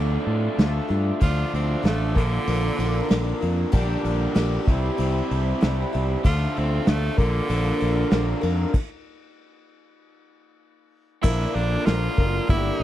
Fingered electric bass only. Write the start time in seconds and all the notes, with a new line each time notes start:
Already playing: D2
0.27 A2
0.58 D2
0.90 G2
1.22 D2
1.54 D2
1.84 A1
2.16 A#1
2.48 A#1
2.79 A#1
3.11 A#1
3.43 F2
3.74 A#1
4.05 A#1
4.36 A#1
4.68 C2
4.99 C2
5.31 C2
5.63 C2
5.95 C2
6.25 D2
6.58 D2
6.88 D2
7.18 A#1
7.50 A#1
7.82 A#1
8.12 A#1
8.43 F2
11.24 A#1
11.55 A#1
11.87 A#1
12.18 F#1
12.49 G1
12.80 A#1